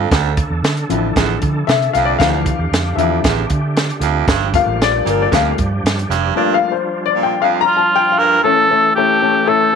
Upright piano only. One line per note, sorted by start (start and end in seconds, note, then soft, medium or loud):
0.89 1.64 F3 medium
0.89 1.64 D4 soft
0.89 1.65 E4 medium
1.67 1.90 E5 loud
1.91 1.94 E5 medium
1.91 2.06 F5 loud
2.05 2.10 D5 loud
2.19 2.55 E3 medium
2.19 2.44 F3 soft
2.19 2.55 D4 medium
2.19 2.44 E4 medium
2.19 2.94 F5 loud
2.96 3.21 F3 medium
2.96 3.22 D4 soft
2.96 3.22 E4 medium
2.96 4.23 E5 medium
4.54 5.29 A3 medium
4.54 5.29 A#3 soft
4.54 5.29 F4 medium
4.54 4.82 F5 loud
4.83 5.09 D5 loud
5.10 5.21 A#4 medium
5.22 5.27 D5 medium
5.31 5.55 A3 medium
5.31 5.56 A#3 soft
5.31 5.56 F4 medium
5.31 5.58 F5 medium
6.35 6.71 A3 medium
6.35 6.71 A#3 soft
6.35 6.71 F4 medium
6.35 6.55 D5 medium
6.54 6.72 F5 loud
6.72 7.04 C5 medium
7.06 7.24 D5 loud
7.23 7.41 G5 medium
7.42 7.59 F5 loud
7.61 7.77 A#5 loud
7.77 7.94 A5 medium
7.96 8.12 G5 loud
8.12 8.43 F5 medium
8.44 8.63 A3 medium
8.44 8.64 C#4 medium
8.44 8.64 E4 medium
8.44 8.64 A4 loud
8.70 8.90 A3 medium
8.70 8.89 C#4 medium
8.70 8.90 E4 medium
8.70 8.90 A4 medium
8.97 9.16 A3 medium
8.97 9.16 C#4 medium
8.97 9.16 E4 medium
8.97 9.16 A4 medium
9.22 9.41 A3 medium
9.22 9.41 C#4 medium
9.22 9.41 E4 medium
9.22 9.41 A4 medium
9.47 9.67 A3 loud
9.47 9.67 C#4 medium
9.47 9.67 E4 medium
9.47 9.67 A4 loud